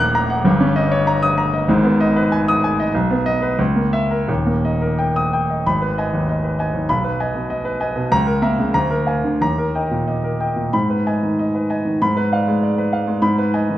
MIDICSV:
0, 0, Header, 1, 2, 480
1, 0, Start_track
1, 0, Key_signature, 5, "minor"
1, 0, Tempo, 625000
1, 346, Time_signature, 2, 2, 24, 8
1, 2752, Tempo, 693642
1, 4192, Tempo, 614125
1, 6592, Tempo, 661521
1, 8512, Tempo, 616650
1, 10379, End_track
2, 0, Start_track
2, 0, Title_t, "Grand piano"
2, 0, Program_c, 0, 0
2, 0, Control_c, 0, 64, 127
2, 0, Note_on_c, 0, 27, 77
2, 0, Note_on_c, 0, 39, 77
2, 0, Note_on_c, 0, 58, 65
2, 0, Note_on_c, 0, 70, 66
2, 0, Note_on_c, 0, 78, 74
2, 0, Note_on_c, 0, 82, 71
2, 0, Note_on_c, 0, 90, 81
2, 115, Note_off_c, 0, 82, 0
2, 115, Note_on_c, 0, 82, 73
2, 182, Note_off_c, 0, 90, 0
2, 230, Note_off_c, 0, 78, 0
2, 230, Note_on_c, 0, 78, 58
2, 301, Note_off_c, 0, 82, 0
2, 316, Note_off_c, 0, 27, 0
2, 320, Note_off_c, 0, 39, 0
2, 339, Note_on_c, 0, 31, 72
2, 346, Note_off_c, 0, 78, 0
2, 347, Note_on_c, 0, 43, 81
2, 359, Control_c, 0, 64, 0
2, 362, Note_off_c, 0, 70, 0
2, 364, Note_off_c, 0, 58, 0
2, 464, Note_on_c, 0, 61, 60
2, 493, Control_c, 0, 64, 127
2, 583, Note_on_c, 0, 75, 71
2, 649, Note_off_c, 0, 61, 0
2, 703, Note_on_c, 0, 73, 72
2, 768, Note_off_c, 0, 75, 0
2, 822, Note_on_c, 0, 82, 69
2, 888, Note_off_c, 0, 73, 0
2, 941, Note_on_c, 0, 87, 81
2, 1009, Note_off_c, 0, 82, 0
2, 1058, Note_on_c, 0, 82, 61
2, 1129, Note_off_c, 0, 87, 0
2, 1179, Note_on_c, 0, 75, 58
2, 1249, Note_off_c, 0, 82, 0
2, 1263, Note_off_c, 0, 31, 0
2, 1267, Note_off_c, 0, 43, 0
2, 1293, Note_on_c, 0, 32, 72
2, 1297, Note_off_c, 0, 75, 0
2, 1300, Note_on_c, 0, 44, 73
2, 1307, Control_c, 0, 64, 0
2, 1416, Note_on_c, 0, 59, 62
2, 1437, Control_c, 0, 64, 127
2, 1540, Note_on_c, 0, 75, 66
2, 1610, Note_off_c, 0, 59, 0
2, 1662, Note_on_c, 0, 71, 61
2, 1732, Note_off_c, 0, 75, 0
2, 1782, Note_on_c, 0, 80, 64
2, 1854, Note_off_c, 0, 71, 0
2, 1907, Note_on_c, 0, 87, 84
2, 1973, Note_off_c, 0, 80, 0
2, 2028, Note_on_c, 0, 80, 61
2, 2095, Note_off_c, 0, 87, 0
2, 2148, Note_on_c, 0, 75, 61
2, 2214, Note_off_c, 0, 80, 0
2, 2228, Note_off_c, 0, 32, 0
2, 2232, Note_off_c, 0, 44, 0
2, 2261, Note_on_c, 0, 35, 67
2, 2263, Note_off_c, 0, 75, 0
2, 2270, Control_c, 0, 64, 0
2, 2386, Note_on_c, 0, 59, 61
2, 2409, Control_c, 0, 64, 127
2, 2503, Note_on_c, 0, 75, 76
2, 2579, Note_off_c, 0, 59, 0
2, 2627, Note_on_c, 0, 71, 50
2, 2703, Note_off_c, 0, 75, 0
2, 2739, Note_off_c, 0, 35, 0
2, 2753, Note_off_c, 0, 71, 0
2, 2755, Note_on_c, 0, 37, 69
2, 2765, Control_c, 0, 64, 0
2, 2871, Note_on_c, 0, 58, 45
2, 2904, Control_c, 0, 64, 127
2, 2991, Note_on_c, 0, 76, 66
2, 3063, Note_off_c, 0, 58, 0
2, 3115, Note_on_c, 0, 70, 51
2, 3187, Note_off_c, 0, 76, 0
2, 3223, Note_off_c, 0, 37, 0
2, 3232, Note_on_c, 0, 27, 55
2, 3238, Note_off_c, 0, 70, 0
2, 3238, Note_on_c, 0, 39, 64
2, 3248, Control_c, 0, 64, 0
2, 3361, Note_on_c, 0, 58, 45
2, 3384, Control_c, 0, 64, 127
2, 3489, Note_on_c, 0, 75, 51
2, 3557, Note_off_c, 0, 58, 0
2, 3606, Note_on_c, 0, 70, 46
2, 3679, Note_off_c, 0, 75, 0
2, 3722, Note_on_c, 0, 79, 50
2, 3796, Note_off_c, 0, 70, 0
2, 3843, Note_on_c, 0, 87, 65
2, 3914, Note_off_c, 0, 79, 0
2, 3962, Note_on_c, 0, 79, 52
2, 4035, Note_off_c, 0, 87, 0
2, 4079, Note_on_c, 0, 75, 41
2, 4148, Note_off_c, 0, 79, 0
2, 4163, Note_off_c, 0, 27, 0
2, 4166, Note_off_c, 0, 39, 0
2, 4191, Note_off_c, 0, 75, 0
2, 4191, Note_on_c, 0, 32, 54
2, 4192, Note_on_c, 0, 83, 65
2, 4205, Control_c, 0, 64, 0
2, 4311, Note_on_c, 0, 71, 44
2, 4335, Control_c, 0, 64, 127
2, 4388, Note_off_c, 0, 83, 0
2, 4439, Note_on_c, 0, 75, 44
2, 4446, Note_on_c, 0, 80, 47
2, 4508, Note_off_c, 0, 71, 0
2, 4547, Note_off_c, 0, 75, 0
2, 4551, Note_off_c, 0, 80, 0
2, 4562, Note_on_c, 0, 39, 46
2, 4681, Note_on_c, 0, 75, 44
2, 4752, Note_off_c, 0, 39, 0
2, 4797, Note_on_c, 0, 71, 37
2, 4871, Note_off_c, 0, 75, 0
2, 4915, Note_on_c, 0, 75, 44
2, 4923, Note_on_c, 0, 80, 49
2, 4988, Note_off_c, 0, 71, 0
2, 5024, Note_off_c, 0, 75, 0
2, 5028, Note_off_c, 0, 80, 0
2, 5037, Note_on_c, 0, 39, 38
2, 5126, Note_off_c, 0, 32, 0
2, 5151, Note_on_c, 0, 83, 70
2, 5153, Note_on_c, 0, 35, 58
2, 5157, Note_off_c, 0, 39, 0
2, 5168, Control_c, 0, 64, 0
2, 5268, Note_on_c, 0, 71, 47
2, 5284, Control_c, 0, 64, 127
2, 5344, Note_off_c, 0, 83, 0
2, 5395, Note_on_c, 0, 80, 51
2, 5396, Note_on_c, 0, 75, 47
2, 5460, Note_off_c, 0, 71, 0
2, 5499, Note_off_c, 0, 80, 0
2, 5500, Note_off_c, 0, 75, 0
2, 5505, Note_on_c, 0, 47, 44
2, 5627, Note_on_c, 0, 75, 51
2, 5694, Note_off_c, 0, 47, 0
2, 5743, Note_on_c, 0, 71, 48
2, 5814, Note_off_c, 0, 75, 0
2, 5865, Note_on_c, 0, 75, 52
2, 5868, Note_on_c, 0, 80, 52
2, 5933, Note_off_c, 0, 71, 0
2, 5971, Note_off_c, 0, 75, 0
2, 5972, Note_off_c, 0, 80, 0
2, 5984, Note_on_c, 0, 47, 49
2, 6071, Note_off_c, 0, 35, 0
2, 6103, Note_off_c, 0, 47, 0
2, 6108, Note_on_c, 0, 37, 68
2, 6110, Note_on_c, 0, 82, 88
2, 6116, Control_c, 0, 64, 0
2, 6227, Note_on_c, 0, 70, 55
2, 6255, Control_c, 0, 64, 127
2, 6300, Note_off_c, 0, 82, 0
2, 6346, Note_on_c, 0, 58, 57
2, 6346, Note_on_c, 0, 76, 53
2, 6350, Note_on_c, 0, 82, 57
2, 6420, Note_off_c, 0, 70, 0
2, 6456, Note_off_c, 0, 76, 0
2, 6458, Note_off_c, 0, 82, 0
2, 6476, Note_on_c, 0, 49, 51
2, 6543, Note_off_c, 0, 58, 0
2, 6581, Note_off_c, 0, 37, 0
2, 6596, Note_off_c, 0, 49, 0
2, 6597, Note_on_c, 0, 82, 74
2, 6599, Note_on_c, 0, 38, 63
2, 6607, Control_c, 0, 64, 0
2, 6706, Control_c, 0, 64, 127
2, 6715, Note_on_c, 0, 70, 53
2, 6786, Note_off_c, 0, 82, 0
2, 6833, Note_on_c, 0, 77, 42
2, 6839, Note_on_c, 0, 80, 47
2, 6908, Note_off_c, 0, 70, 0
2, 6943, Note_off_c, 0, 77, 0
2, 6946, Note_off_c, 0, 80, 0
2, 6961, Note_on_c, 0, 50, 48
2, 7067, Note_off_c, 0, 38, 0
2, 7081, Note_off_c, 0, 50, 0
2, 7084, Note_on_c, 0, 39, 55
2, 7087, Note_on_c, 0, 82, 70
2, 7094, Control_c, 0, 64, 0
2, 7206, Note_on_c, 0, 70, 46
2, 7231, Control_c, 0, 64, 127
2, 7278, Note_off_c, 0, 82, 0
2, 7329, Note_on_c, 0, 75, 41
2, 7331, Note_on_c, 0, 79, 44
2, 7397, Note_off_c, 0, 70, 0
2, 7434, Note_off_c, 0, 75, 0
2, 7435, Note_off_c, 0, 79, 0
2, 7446, Note_on_c, 0, 46, 40
2, 7565, Note_on_c, 0, 75, 41
2, 7634, Note_off_c, 0, 46, 0
2, 7683, Note_on_c, 0, 70, 39
2, 7754, Note_off_c, 0, 75, 0
2, 7801, Note_on_c, 0, 75, 36
2, 7804, Note_on_c, 0, 79, 41
2, 7874, Note_off_c, 0, 70, 0
2, 7910, Note_off_c, 0, 75, 0
2, 7911, Note_off_c, 0, 79, 0
2, 7918, Note_on_c, 0, 46, 33
2, 8015, Note_off_c, 0, 39, 0
2, 8039, Note_off_c, 0, 46, 0
2, 8041, Note_on_c, 0, 83, 62
2, 8043, Note_on_c, 0, 44, 54
2, 8056, Control_c, 0, 64, 0
2, 8163, Note_on_c, 0, 71, 42
2, 8203, Control_c, 0, 64, 127
2, 8232, Note_off_c, 0, 83, 0
2, 8285, Note_on_c, 0, 75, 42
2, 8285, Note_on_c, 0, 80, 46
2, 8352, Note_off_c, 0, 71, 0
2, 8388, Note_off_c, 0, 75, 0
2, 8389, Note_off_c, 0, 80, 0
2, 8403, Note_on_c, 0, 51, 43
2, 8520, Note_on_c, 0, 75, 44
2, 8589, Note_off_c, 0, 51, 0
2, 8641, Note_on_c, 0, 71, 38
2, 8712, Note_off_c, 0, 75, 0
2, 8758, Note_on_c, 0, 75, 44
2, 8763, Note_on_c, 0, 80, 44
2, 8833, Note_off_c, 0, 71, 0
2, 8867, Note_off_c, 0, 75, 0
2, 8870, Note_off_c, 0, 80, 0
2, 8877, Note_on_c, 0, 51, 44
2, 8972, Note_off_c, 0, 44, 0
2, 9000, Note_off_c, 0, 51, 0
2, 9007, Note_on_c, 0, 83, 70
2, 9009, Note_on_c, 0, 44, 57
2, 9013, Control_c, 0, 64, 0
2, 9124, Note_on_c, 0, 71, 53
2, 9137, Control_c, 0, 64, 127
2, 9198, Note_off_c, 0, 83, 0
2, 9243, Note_on_c, 0, 74, 44
2, 9249, Note_on_c, 0, 77, 51
2, 9315, Note_off_c, 0, 71, 0
2, 9350, Note_off_c, 0, 74, 0
2, 9353, Note_off_c, 0, 77, 0
2, 9368, Note_on_c, 0, 56, 48
2, 9484, Note_on_c, 0, 74, 47
2, 9552, Note_off_c, 0, 56, 0
2, 9603, Note_on_c, 0, 71, 46
2, 9668, Note_off_c, 0, 74, 0
2, 9713, Note_on_c, 0, 74, 41
2, 9717, Note_on_c, 0, 77, 48
2, 9786, Note_off_c, 0, 71, 0
2, 9818, Note_off_c, 0, 74, 0
2, 9820, Note_off_c, 0, 77, 0
2, 9831, Note_on_c, 0, 56, 47
2, 9924, Note_off_c, 0, 44, 0
2, 9943, Note_on_c, 0, 44, 60
2, 9943, Note_on_c, 0, 83, 68
2, 9949, Note_off_c, 0, 56, 0
2, 9961, Control_c, 0, 64, 0
2, 10064, Control_c, 0, 64, 127
2, 10069, Note_on_c, 0, 71, 46
2, 10138, Note_off_c, 0, 83, 0
2, 10192, Note_on_c, 0, 75, 47
2, 10192, Note_on_c, 0, 80, 49
2, 10262, Note_off_c, 0, 71, 0
2, 10300, Note_off_c, 0, 75, 0
2, 10300, Note_off_c, 0, 80, 0
2, 10314, Note_on_c, 0, 51, 43
2, 10379, Note_off_c, 0, 44, 0
2, 10379, Note_off_c, 0, 51, 0
2, 10379, End_track
0, 0, End_of_file